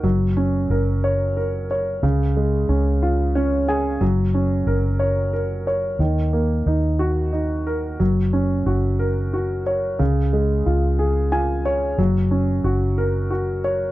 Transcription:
<<
  \new Staff \with { instrumentName = "Grand piano" } { \time 6/8 \key fis \major \tempo 4. = 60 fis8 cis'8 ais'8 cis''8 ais'8 cis''8 | cis8 gis8 cis'8 eis'8 <cis' cis''>8 <gis' gis''>8 | fis8 cis'8 ais'8 cis''8 ais'8 cis''8 | dis8 ais8 dis'8 fis'8 dis'8 ais'8 |
fis8 cis'8 fis'8 ais'8 fis'8 cis''8 | cis8 gis8 eis'8 gis'8 <eis' gis''>8 cis''8 | fis8 cis'8 fis'8 ais'8 fis'8 cis''8 | }
  \new Staff \with { instrumentName = "Fingered electric bass" } { \clef bass \time 6/8 \key fis \major fis,,4 fis,,2 | cis,4 cis,2 | fis,,4 fis,,2 | dis,4 dis,2 |
fis,,4 fis,,2 | cis,4 cis,2 | fis,,4 fis,,2 | }
>>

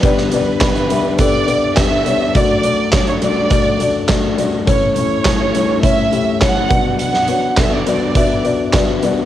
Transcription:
<<
  \new Staff \with { instrumentName = "Violin section" } { \time 4/4 \key d \major \tempo 4 = 104 b'8 b'4. d''4 e''4 | d''4 d''16 cis''16 d''4. r4 | cis''8 cis''4. e''4 fis''4 | fis''4 e''16 d''16 d''4. r4 | }
  \new Staff \with { instrumentName = "Felt piano" } { \time 4/4 \key d \major <b d' g' d''>8 <b d' g' d''>8 <b d' g' d''>8 <b d' g' e''>8 <b d' g' a'>8 <b d' g' d''>8 <b d' g' d''>8 <b d' g' cis''>8 | <a d' fis' d''>8 <a d' fis' d''>8 <a d' fis' cis''>8 <a d' fis' d''>8 <a d' fis' d''>8 <a d' fis' d''>8 <a d' fis' d''>8 <a d' fis' d''>8 | <a cis' e' cis''>8 <a cis' e' cis''>8 <a cis' e' cis''>8 <a cis' e' cis''>8 <a cis' e' cis''>8 <a cis' e' g'>8 <a cis' e' cis''>8 <b d' fis' d''>8~ | <b d' fis' d''>8 <b d' fis' cis''>8 <b d' fis' a'>8 <b d' fis' d''>8 <b d' fis' e''>8 <b d' fis' d''>8 <b d' fis' d''>8 <b d' fis' d''>8 | }
  \new Staff \with { instrumentName = "Felt piano" } { \clef bass \time 4/4 \key d \major <g, d>1 | <fis, fis>1 | <a, e>2.~ <a, e>8 <b, fis>8~ | <b, fis>2.~ <b, fis>8 r8 | }
  \new DrumStaff \with { instrumentName = "Drums" } \drummode { \time 4/4 <hh bd>16 sn16 hh8 <hc hh bd sn>16 hh16 hh8 <hh bd>8 hh8 <hc hh bd sn>8 hh8 | <hh bd>8 hh8 <hc hh bd sn>16 hh16 hh8 <hh bd>8 hh8 <hc hh bd sn>8 hh8 | <hh bd>8 hh8 <hc hh bd sn>8 hh8 <hh bd>8 hh8 <hc hh bd sn>8 <hh bd>8 | hh16 sn16 hh8 <hc hh bd sn>8 hh8 <hh bd>8 hh8 <hc hh bd sn>8 hh8 | }
>>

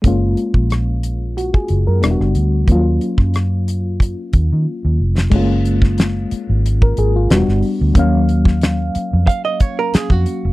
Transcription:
<<
  \new Staff \with { instrumentName = "Hollow-body jazz guitar" } { \time 4/4 \key fis \major \tempo 4 = 91 r1 | r1 | r1 | r2 eis''16 dis''16 cis''16 ais'16 gis'16 fis'8. | }
  \new Staff \with { instrumentName = "FM electric piano" } { \time 4/4 \key fis \major r2 fis'16 gis'8 ais'8 r8. | r1 | r2 r16 ais'16 gis'16 eis'8 r8. | r1 | }
  \new Staff \with { instrumentName = "FM electric piano" } { \time 4/4 \key fis \major <gis ais cis' eis'>2. <g b d' e' fis'>4 | <eis fis ais cis' eis'>1 | <gis a ais cis' eis'>2. <g b d' fis'>4 | <eis fis ais cis' eis''>1 | }
  \new Staff \with { instrumentName = "Fingered electric bass" } { \clef bass \time 4/4 \key fis \major fis,,8 r16 ais,,4. r16 fis,,16 fis,16 e,,16 fis,,16 d,8 | dis,8 r16 fis,4. r16 dis,16 dis16 r16 dis,16 eis,,8 | fis,,4. r16 gis,,8. gis,,8 e,,16 g,,16 r16 d,16 | dis,4. r16 eis,16 r4 r16 eis,16 r16 eis,,16 | }
  \new DrumStaff \with { instrumentName = "Drums" } \drummode { \time 4/4 <hh bd>8 hh16 bd16 <hh ss>8 hh8 hh16 bd16 hh8 <hh ss>16 ss16 hh8 | <hh bd>8 hh16 <bd ss>16 <hh ss>8 hh8 <hh bd>8 <hh bd>8 r8. sn16 | <cymc bd>8 hh16 <bd sn>16 <hh sn>8 hh8 hh16 bd16 hh8 <hh sn>16 sn16 hho8 | <hh bd>8 hh16 <bd sn>16 <hh sn>8 hh8 <hh bd>8 <hh bd>8 <hh sn>16 bd16 hh8 | }
>>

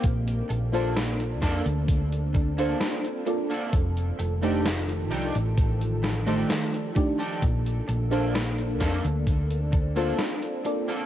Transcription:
<<
  \new Staff \with { instrumentName = "FM electric piano" } { \time 4/4 \key bes \major \tempo 4 = 65 r8. <bes d' f' a' c''>16 r4. r16 <bes d' f' a' c''>8. <bes d' f' a' d''>16 r16 | r8. <a d' ees' g' c''>16 r4. r16 <ees a g' c'' d''>8. <a d' ees' g' d''>16 r16 | r8. <bes d' f' a' c''>16 r4. r16 <bes d' f' a' c''>8. <bes d' f' a' d''>16 r16 | }
  \new Staff \with { instrumentName = "Clean electric guitar" } { \time 4/4 \key bes \major r8. <bes d' a'>16 r8 <bes d' a'>16 r4 <bes d' a'>16 r8. <bes d' a'>16 | r8. <d' ees' g' a'>16 r8 <d' ees' g' a'>16 r4 <d' ees' g' a'>16 r8. <d' ees' g' a'>16 | r8. <bes d' a'>16 r8 <bes d' a'>16 r4 <bes d' a'>16 r8. <bes d' a'>16 | }
  \new Staff \with { instrumentName = "String machine" } { \time 4/4 \key bes \major << { <d' a'>1 | <ees f>1 | d'1 | } \\ { bes2 c'2 | r1 | bes2 c'2 | } >> }
  \new Staff \with { instrumentName = "Fingered electric bass" } { \clef bass \time 4/4 \key bes \major bes,,8 bes,,4 f,16 d,4~ d,16 r4 | f,,8 f,,4 c,16 a,,4~ a,,16 r4 | bes,,8 bes,,4 f,16 d,4~ d,16 r4 | }
  \new DrumStaff \with { instrumentName = "Drums" } \drummode { \time 4/4 <hh bd>16 hh16 hh16 hh16 <hh sn>16 hh16 <hh bd sn>16 hh16 <hh bd>16 hh16 <hh bd>16 hh16 <hh sn>16 hh16 hh16 hh16 | <hh bd>16 hh16 hh16 hh16 <hh sn>16 hh16 hh16 hh16 <hh bd>16 hh16 <hh sn>16 hh16 <hh sn>16 hh16 <hh bd>16 hh16 | <hh bd>16 hh16 hh16 hh16 <hh sn>16 hh16 <hh bd sn>16 hh16 <hh bd>16 hh16 <hh bd>16 hh16 <hh sn>16 hh16 hh16 hh16 | }
>>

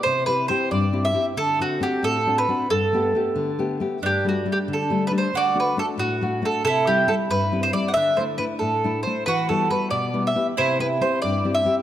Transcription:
<<
  \new Staff \with { instrumentName = "Mandolin" } { \time 6/8 \key g \major \tempo 4. = 92 c''8 b'8 c''8 d''8. e''8 r16 | a'8 fis'8 g'8 a'8. b'8. | a'2~ a'8 r8 | g'8 fis'8 g'8 a'8. b'16 c''8 |
d''8 b'8 a'8 fis'4 a'8 | a'8 g'8 a'8 b'8. c''16 d''16. fis''32 | e''8 c''8 b'8 a'4 c''8 | b'8 a'8 b'8 d''8. e''8 r16 |
c''8 b'8 c''8 d''8. e''8 r16 | }
  \new Staff \with { instrumentName = "Mandolin" } { \time 6/8 \key g \major r2. | r2. | r2. | d'2. |
fis'2. | e'2. | d'2~ d'8 r8 | fis'2. |
e'2. | }
  \new Staff \with { instrumentName = "Nylon-string guitar" } { \time 6/8 \key g \major c8 <c' e' g'>8 <c' e' g'>8 g,8 <c' e' g'>8 <c' e' g'>8 | d8 <c' d' fis'>8 <c' d' fis'>8 a,8 <c' d' fis'>8 <c' d' fis'>8 | g,8 <a b g'>8 <a b g'>8 d8 <a b g'>8 <a b g'>8 | g,8 <g a d'>8 <g a d'>8 d8 <g a d'>8 <g a d'>8 |
d8 <a d' fis'>8 <a d' fis'>8 a,8 <a d' fis'>8 <a d' fis'>8 | c8 <g c' e'>8 <g c' e'>8 g,8 <g c' e'>8 <g c' e'>8 | d8 <a d' e'>8 <a d' e'>8 a,8 <a d' e'>8 <a d' e'>8 | e8 <g b e'>8 <g b e'>8 b,8 <g b e'>8 <b e' g'>8 |
c8 <c' e' g'>8 <c' e' g'>8 g,8 <c' e' g'>8 <c' e' g'>8 | }
>>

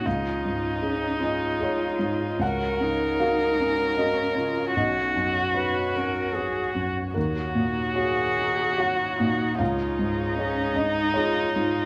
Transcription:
<<
  \new Staff \with { instrumentName = "String section" } { \time 3/4 \key des \mixolydian \tempo 4 = 76 << { <des' ees''>2. | <des' des''>2.~ | <des' des''>2. | <ees' des''>2.~ |
<ees' des''>2. | } \\ { aes'2. | bes'2. | fis'2.~ | fis'2. |
aes'2. | } >> }
  \new Staff \with { instrumentName = "Felt piano" } { \time 3/4 \key des \mixolydian << { f''4. ees''8 des''4 | ges''4 f''4 ees''4 | ees''4 cis''4 r4 | bes'2 ges''4 |
f''4. ees''8 des''4 | } \\ { des,8 aes,8 <ees' aes'>8 des'8 <ees' aes'>8 aes,8 | des,8 des8 <ges' bes'>8 des'8 <ges' bes'>8 des8 | b,,8 fis,8 <fis' b'>8 cis'8 <fis' b'>8 fis,8 | ees,8 bes,8 <ges' des''>8 ees'8 <ges' des''>8 bes,8 |
des,8 aes,8 <aes' des''>8 ees'8 aes'8 aes,8 | } >> }
  \new Staff \with { instrumentName = "Violin" } { \time 3/4 \key des \mixolydian ees'2. | bes'2. | fis'2~ fis'8. r16 | ges'2. |
ees'2. | }
  \new Staff \with { instrumentName = "Cello" } { \time 3/4 \key des \mixolydian f'4 des'8 f'4. | ges'8 ees'4. des'8 f'8 | fis'4 b'8 bes'8 aes'8 fis'8 | r4 aes'4 ges'8 ees'8 |
f'4 des'8 ees'8 f'8 f'8 | }
>>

